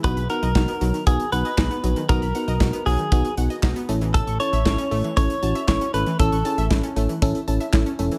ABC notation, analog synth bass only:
X:1
M:4/4
L:1/16
Q:1/4=117
K:B
V:1 name="Analog synth bass" clef=bass
B,,, B,,, z B,,, B,,, z B,,, z B,,, z B,,, z B,,, z A,,, z | B,,, B,,, z B,,, B,,, z B,,, z B,,, z B,,, z B,,, z =A,,,2- | =A,,, A,,, z A,,, A,,, z A,,, z A,,, z A,,, z A,,, z G,,, z | =A,,, A,,, z A,,, A,,, z A,,, z A,,, z A,,, z A,,, z E,,, z |]